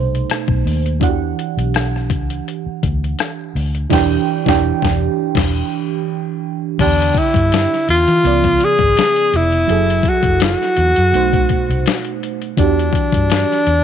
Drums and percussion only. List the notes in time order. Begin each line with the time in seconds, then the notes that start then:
0.15 closed hi-hat
0.30 cross-stick, closed hi-hat
0.48 kick
0.67 open hi-hat
0.86 closed hi-hat
1.01 kick, closed hi-hat
1.39 closed hi-hat
1.59 closed hi-hat
1.74 cross-stick, closed hi-hat
1.96 cross-stick
2.10 kick, closed hi-hat
2.30 closed hi-hat
2.48 closed hi-hat
2.83 kick, closed hi-hat
3.04 closed hi-hat
3.19 cross-stick, closed hi-hat
3.56 open hi-hat
3.75 closed hi-hat
3.90 kick, snare, crash
4.46 kick, snare
4.82 kick, snare
5.35 kick, snare, crash
6.79 kick, closed hi-hat, crash
7.02 closed hi-hat
7.14 kick, closed hi-hat
7.34 kick, closed hi-hat
7.52 snare, closed hi-hat
7.74 snare, closed hi-hat
7.89 closed hi-hat
8.08 closed hi-hat
8.25 closed hi-hat
8.44 kick, closed hi-hat
8.60 closed hi-hat
8.79 kick, closed hi-hat
8.97 snare, closed hi-hat
9.16 closed hi-hat
9.34 closed hi-hat
9.52 closed hi-hat
9.69 closed hi-hat
9.90 closed hi-hat
10.03 kick, closed hi-hat
10.23 kick, closed hi-hat
10.40 snare, closed hi-hat
10.62 snare, closed hi-hat
10.77 closed hi-hat
10.96 closed hi-hat
11.14 closed hi-hat
11.33 kick, closed hi-hat
11.49 kick, closed hi-hat
11.71 closed hi-hat
11.86 snare, closed hi-hat
12.05 closed hi-hat
12.23 closed hi-hat
12.42 closed hi-hat
12.57 kick, closed hi-hat
12.79 closed hi-hat
12.93 kick, closed hi-hat
13.12 kick, closed hi-hat
13.30 snare, closed hi-hat
13.52 snare, closed hi-hat
13.67 closed hi-hat